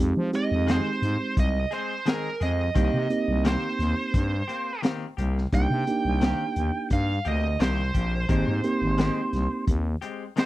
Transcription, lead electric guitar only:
0.36 D#5
0.71 C5
1.40 D#5
1.74 C5
2.08 A#4
2.43 D#5
3.47 C5
5.55 G5
6.93 F5
7.28 D#5
7.61 C5
10.39 C5

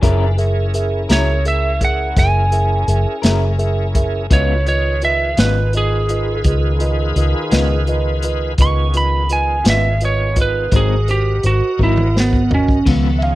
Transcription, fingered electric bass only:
0.03 F#1
1.10 C#2
2.16 F#1
2.88 F#1
3.24 F#1
4.31 C#2
5.38 G#1
6.44 C#2
7.16 C#2
7.52 C#2
8.58 C#2
9.65 G#1
10.72 G#1
11.44 G#1
11.79 G#1
12.86 C#2

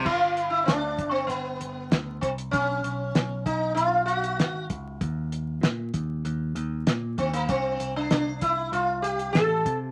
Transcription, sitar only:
0.05 F4
0.50 E4
0.65 D4
1.11 C4
1.27 B3
2.21 C4
2.51 C#4
3.46 D#4
3.75 F4
4.06 F#4
7.18 C4
7.33 A#3
7.50 C4
7.96 D4
8.11 D4
8.42 E4
8.73 F4
9.02 G4
9.33 A4

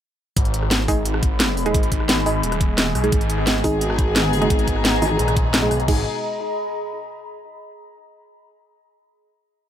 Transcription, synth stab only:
0.88 G#3 D#4 G#4
1.66 G#3 D#4 G#4
2.26 G#3 D#4 G#4
3.04 G#3 D#4 G#4
3.64 G#3 D#4 G#4
4.42 G#3 D#4 G#4
5.02 G#3 D#4 G#4
5.62 G#3 D#4 G#4
5.88 G#3 D#4 G#4

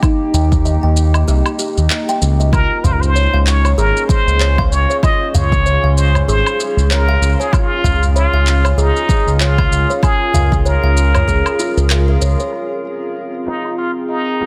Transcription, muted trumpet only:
2.53 A#4
2.84 C5
2.93 A#4
3.01 C5
3.47 C#5
3.78 A#4
4.09 C5
4.72 C#5
5.03 D#5
5.34 C#5
5.97 C5
6.28 C5
6.91 A#4
7.40 G#4
7.53 F4
8.15 F4
8.78 D#4
9.41 F4
10.03 G#4
10.66 A#4
13.47 D#4
13.78 F4
14.09 D#4

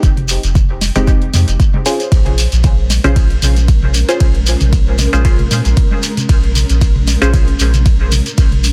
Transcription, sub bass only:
0.03 F1
0.43 F1
0.96 F1
1.34 F2
1.48 F1
2.12 A#1
2.52 A#1
3.04 A#1
3.42 A#1
4.20 A#1
4.61 A#1
5.13 A#1
5.51 A#2
5.65 A#1
6.29 A#1
6.69 A#1
7.22 A#1
7.60 A#1
8.38 A#1

